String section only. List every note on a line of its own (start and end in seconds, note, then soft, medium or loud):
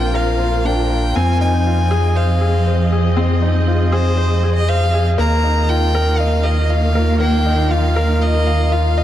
0.00 2.10 A#3 medium
0.00 2.11 F4 medium
0.00 2.51 C5 medium
1.16 5.19 F3 medium
1.32 6.81 C4 medium
1.39 6.71 D#5 medium
2.18 6.33 G#4 medium
5.19 9.04 D#3 medium
5.41 9.04 F4 medium
5.56 9.04 A#3 medium
5.89 9.04 F5 medium